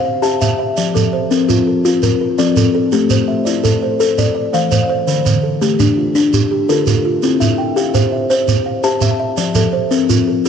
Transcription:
Already playing: kalimba C5 F5
0.05 kalimba F5
0.22 kalimba C4 G4 E5 A5, shekere
0.42 kalimba E5, shekere
0.59 kalimba E5
0.77 kalimba F3 D5, shekere
0.95 kalimba F3 A4, shekere
1.13 kalimba C5
1.31 kalimba C4 A#4, shekere
1.48 kalimba F4, shekere
1.67 kalimba A4
1.85 kalimba F4, shekere
2.03 kalimba A#4, shekere
2.21 kalimba A#4
2.39 kalimba F3 C4 A4 D5, shekere
2.56 kalimba A4, shekere
2.75 kalimba A4
2.92 kalimba A3 G4, shekere
3.10 kalimba A3 C5, shekere
3.28 kalimba E5
3.45 kalimba E4 D5, shekere
3.63 kalimba A4, shekere
3.83 kalimba C5
4.00 kalimba A4, shekere
4.18 kalimba D5, shekere
4.35 kalimba D5
4.53 kalimba E3 A3 C5 F5, shekere
4.72 kalimba C5, shekere
4.89 kalimba C5
5.07 kalimba D3 A#4, shekere
5.25 kalimba D3, shekere
5.43 kalimba A4
5.61 kalimba A3 G4, shekere
5.79 kalimba D4, shekere
5.98 kalimba F4
6.15 kalimba D4, shekere
6.33 kalimba G4, shekere
6.51 kalimba G4
6.69 kalimba D3 F4 A4 A#4, shekere
6.87 kalimba F4, shekere
7.05 kalimba F4
7.23 kalimba C4 E4, shekere
7.40 kalimba C4 E5, shekere
7.58 kalimba G5
7.76 kalimba G4 F5, shekere
7.94 kalimba C5, shekere
8.12 kalimba E5
8.30 kalimba C5, shekere
8.48 shekere
8.66 kalimba F5
8.84 kalimba C4 G4 E5 A5, shekere
9.01 kalimba E5, shekere
9.20 kalimba E5
9.37 kalimba F3 D5, shekere
9.55 kalimba F3 A4, shekere
9.73 kalimba C5
9.91 kalimba C4 A#4, shekere
10.09 kalimba F4, shekere
10.28 kalimba A4
10.46 kalimba F4, shekere

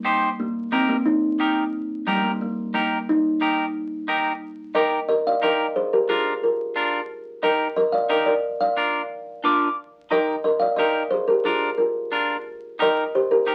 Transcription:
Already playing: kalimba A#3
0.05 clean electric guitar D#4 G4 C5
0.40 kalimba A#3
0.72 kalimba C4, clean electric guitar D#4 G4 A#4
0.89 kalimba A#3
1.06 kalimba D#4
1.40 clean electric guitar D#4 G4 A#4
2.07 kalimba G3, clean electric guitar D#4 G4 A#4
2.12 kalimba A#3
2.16 kalimba G3
2.24 kalimba A#3
2.41 kalimba A#3
2.74 kalimba A#3, clean electric guitar D#4 G4 A#4
3.09 kalimba D#4
3.41 clean electric guitar D#4 G4 A#4
4.08 clean electric guitar D#4 G4 A#4
4.75 clean electric guitar D#4 G4 A#4, kalimba A#4 D#5
5.09 kalimba A#4 D#5
5.27 kalimba D5 F5
5.42 clean electric guitar D#4 G4 A#4, kalimba A#4 D#5
5.76 kalimba G#4 C5
5.93 kalimba G4 A#4
6.09 clean electric guitar D4 F4 A#4, kalimba F4 G#4
6.43 kalimba F4 A#4
6.76 clean electric guitar D4 F4 A#4
7.43 clean electric guitar D#4 G4 A#4, kalimba A#4 D#5
7.76 kalimba A#4 D#5
7.92 kalimba D5 F5
8.09 clean electric guitar D#4 G4 A#4, kalimba A#4 D#5
8.26 kalimba A#4 D5
8.61 kalimba D5 F5
8.77 clean electric guitar D4 F4 A#4
9.44 clean electric guitar D4 F4 A#4 D6
10.11 clean electric guitar D#4 G4 A#4, kalimba A#4 D#5
10.44 kalimba A#4 D#5
10.60 kalimba D5 F5
10.76 clean electric guitar D#4 G4 A#4, kalimba A#4 D#5
11.11 kalimba G#4 C5
11.28 kalimba G4 A#4
11.44 clean electric guitar D4 F4 A#4, kalimba F4 G#4
11.78 kalimba F4 A#4
12.12 clean electric guitar D4 F4 A#4
12.79 clean electric guitar D#4 G4 A#4, kalimba A#4 D#5
13.15 kalimba G4 C5
13.31 kalimba G4 A#4
13.47 clean electric guitar D#4 G4 A#4

